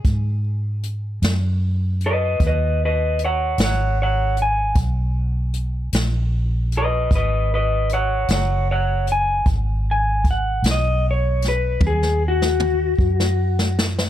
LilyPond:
<<
  \new Staff \with { instrumentName = "Clean electric guitar" } { \time 12/8 \key gis \minor \tempo 4. = 51 r2 r8 <b' dis''>8 <b' dis''>8 <b' dis''>8 <cis'' fis''>8 <cis'' fis''>8 <cis'' fis''>8 gis''8 | r2 r8 <b' dis''>8 <b' dis''>8 <b' dis''>8 <cis'' fis''>8 <cis'' fis''>8 <cis'' fis''>8 gis''8 | r8 gis''8 fis''8 dis''8 cis''8 b'8 gis'8 fis'2 r8 | }
  \new Staff \with { instrumentName = "Fingered electric bass" } { \clef bass \time 12/8 \key gis \minor gis,4. fis,4. dis,4. gis,,4. | b,,4. ais,,4. gis,,4. fis,,4. | gis,,4. b,,4. dis,4. fis,4. | }
  \new DrumStaff \with { instrumentName = "Drums" } \drummode { \time 12/8 <hh bd>4 hh8 <hh sn>4 hh8 <hh bd>4 hh8 <hh sn>4 hh8 | <hh bd>4 hh8 <hh sn>4 hh8 <hh bd>4 hh8 <hh sn>4 hh8 | <hh bd>4 <hh bd>8 <hh sn>4 <hh sn>8 <bd tommh>16 sn8 sn16 toml8 bd16 sn8 sn16 sn16 sn16 | }
>>